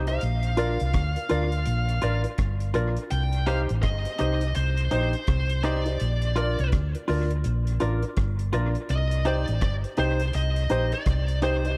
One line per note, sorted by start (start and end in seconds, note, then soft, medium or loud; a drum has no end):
0.00 0.18 C2 loud
0.07 0.18 D#4 medium
0.07 0.18 G4 medium
0.07 0.18 C5 medium
0.07 2.21 F5 loud
0.07 closed hi-hat soft
0.21 0.77 A#1 medium
0.21 closed hi-hat medium
0.43 closed hi-hat soft
0.57 0.74 D4 medium
0.57 0.75 F4 medium
0.57 0.80 F4 medium
0.57 0.75 A#4 medium
0.57 0.81 A#4 medium
0.57 0.81 D5 medium
0.57 closed hi-hat medium
0.80 0.94 C2 medium
0.80 closed hi-hat medium
0.93 1.15 D2 medium
0.93 kick loud
0.93 cross-stick loud
0.93 closed hi-hat medium
1.16 1.22 F4 soft
1.16 1.22 A#4 soft
1.16 closed hi-hat medium
1.29 1.65 D2 medium
1.29 1.46 D4 medium
1.29 1.47 F4 medium
1.29 1.52 F4 medium
1.29 1.47 A#4 medium
1.29 1.53 A#4 medium
1.29 1.53 D5 medium
1.29 closed hi-hat medium
1.52 closed hi-hat medium
1.66 2.01 A#1 medium
1.66 closed hi-hat medium
1.89 closed hi-hat medium
2.02 2.24 A1 medium
2.02 2.19 D4 medium
2.02 2.25 F4 medium
2.02 2.19 F4 medium
2.02 2.20 A#4 loud
2.02 2.25 A#4 medium
2.02 2.26 D5 medium
2.02 closed hi-hat medium
2.24 2.30 F4 soft
2.24 2.30 A#4 soft
2.24 closed hi-hat soft
2.38 2.73 G1 medium
2.38 kick loud
2.38 cross-stick loud
2.38 closed hi-hat medium
2.60 closed hi-hat medium
2.74 2.96 A#1 medium
2.74 2.91 D4 medium
2.74 2.97 F4 medium
2.74 2.92 F4 medium
2.74 2.97 A#4 medium
2.74 2.92 A#4 medium
2.74 2.98 D5 medium
2.74 closed hi-hat medium
2.97 closed hi-hat soft
3.10 3.66 C2 loud
3.10 3.47 G5 loud
3.10 closed hi-hat medium
3.33 closed hi-hat medium
3.46 3.64 D#4 medium
3.46 3.69 D#4 medium
3.46 3.64 G4 medium
3.46 3.70 G4 loud
3.46 3.64 C5 loud
3.46 3.70 C5 loud
3.46 3.57 F5 medium
3.46 closed hi-hat medium
3.69 3.83 A1 medium
3.69 closed hi-hat medium
3.83 4.05 G1 medium
3.83 4.18 D#5 medium
3.83 kick loud
3.83 cross-stick loud
3.83 closed hi-hat medium
4.05 4.11 G4 soft
4.05 4.11 C5 soft
4.05 closed hi-hat medium
4.19 4.54 C2 medium
4.19 4.36 D#4 medium
4.19 4.42 D#4 medium
4.19 4.36 G4 medium
4.19 4.42 G4 medium
4.19 4.37 C5 medium
4.19 4.43 C5 medium
4.19 4.55 D#5 medium
4.19 closed hi-hat medium
4.41 closed hi-hat medium
4.55 4.90 C2 loud
4.55 5.64 C5 medium
4.55 closed hi-hat medium
4.78 closed hi-hat medium
4.91 5.13 A#1 medium
4.91 5.08 D#4 medium
4.91 5.14 D#4 medium
4.91 5.09 G4 medium
4.91 5.14 G4 medium
4.91 5.09 C5 medium
4.91 5.15 C5 medium
4.91 closed hi-hat medium
5.13 closed hi-hat soft
5.27 5.96 C2 medium
5.27 kick loud
5.27 cross-stick loud
5.27 closed hi-hat medium
5.49 closed hi-hat medium
5.63 5.80 D#4 medium
5.63 5.86 D#4 medium
5.63 5.81 G4 medium
5.63 5.86 G4 medium
5.63 5.81 C5 medium
5.63 5.85 C5 medium
5.63 6.68 D5 medium
5.63 closed hi-hat medium
5.85 5.96 D#4 medium
5.85 5.97 G4 medium
5.85 5.97 C5 medium
5.85 muted clean electric guitar stroke medium
5.85 closed hi-hat soft
6.00 6.56 A#1 medium
6.00 closed hi-hat medium
6.22 closed hi-hat medium
6.35 6.53 D4 medium
6.35 6.58 F4 medium
6.35 6.53 F4 medium
6.35 6.53 A#4 loud
6.35 6.59 A#4 medium
6.35 6.59 D5 medium
6.35 closed hi-hat medium
6.59 6.72 C2 medium
6.59 closed hi-hat soft
6.72 6.94 D2 medium
6.72 kick loud
6.72 cross-stick loud
6.72 closed hi-hat medium
6.95 7.00 F4 soft
6.95 7.00 A#4 soft
6.95 closed hi-hat medium
7.08 7.43 D2 medium
7.08 7.25 D4 medium
7.08 7.31 F4 medium
7.08 7.25 F4 medium
7.08 7.31 A#4 medium
7.08 7.26 A#4 medium
7.08 7.32 D5 medium
7.08 open hi-hat soft
7.31 closed hi-hat medium
7.44 7.79 A#1 loud
7.44 closed hi-hat medium
7.67 closed hi-hat medium
7.80 8.03 A1 medium
7.80 7.97 D4 medium
7.80 8.03 F4 medium
7.80 7.98 F4 medium
7.80 7.98 A#4 loud
7.80 8.04 A#4 medium
7.80 8.04 D5 medium
7.80 closed hi-hat medium
8.03 8.09 F4 soft
8.03 8.09 A#4 soft
8.03 closed hi-hat soft
8.17 8.51 G1 medium
8.17 kick loud
8.17 cross-stick loud
8.17 closed hi-hat medium
8.39 closed hi-hat medium
8.52 8.75 A#1 loud
8.52 8.70 D4 medium
8.52 8.76 F4 medium
8.52 8.70 F4 medium
8.52 8.70 A#4 loud
8.52 8.76 A#4 medium
8.52 8.76 D5 loud
8.52 closed hi-hat medium
8.75 closed hi-hat soft
8.89 9.45 C2 loud
8.89 9.26 D#5 loud
8.89 closed hi-hat medium
9.11 closed hi-hat medium
9.25 9.48 D#4 medium
9.25 9.42 D#4 medium
9.25 9.43 G4 medium
9.25 9.48 G4 medium
9.25 9.43 C5 loud
9.25 9.49 C5 medium
9.25 9.61 D5 loud
9.25 closed hi-hat medium
9.48 9.61 A1 medium
9.48 closed hi-hat medium
9.61 9.83 G1 medium
9.61 9.72 D5 medium
9.61 kick loud
9.61 cross-stick loud
9.61 closed hi-hat medium
9.84 9.90 G4 soft
9.84 9.90 C5 soft
9.84 closed hi-hat medium
9.97 10.32 C2 medium
9.97 10.14 D#4 medium
9.97 10.20 D#4 medium
9.97 10.15 G4 medium
9.97 10.21 G4 medium
9.97 10.15 C5 loud
9.97 10.35 C5 medium
9.97 10.21 C5 medium
9.97 closed hi-hat medium
10.20 closed hi-hat medium
10.33 10.68 C2 medium
10.33 10.93 D#5 loud
10.33 closed hi-hat medium
10.56 closed hi-hat medium
10.69 10.92 A#1 medium
10.69 10.87 D#4 medium
10.69 10.93 D#4 medium
10.69 10.87 G4 medium
10.69 10.93 G4 medium
10.69 10.87 C5 medium
10.69 10.93 C5 medium
10.69 closed hi-hat medium
10.92 11.44 D5 loud
10.92 closed hi-hat soft
11.06 11.75 C2 medium
11.06 kick loud
11.06 cross-stick loud
11.06 closed hi-hat medium
11.28 closed hi-hat medium
11.41 11.59 D#4 medium
11.41 11.65 D#4 medium
11.41 11.59 G4 medium
11.41 11.65 G4 medium
11.41 11.60 C5 loud
11.41 11.77 C5 medium
11.41 11.66 C5 medium
11.41 closed hi-hat medium
11.64 11.75 D#4 medium
11.64 11.75 G4 medium
11.64 11.75 C5 medium
11.64 closed hi-hat soft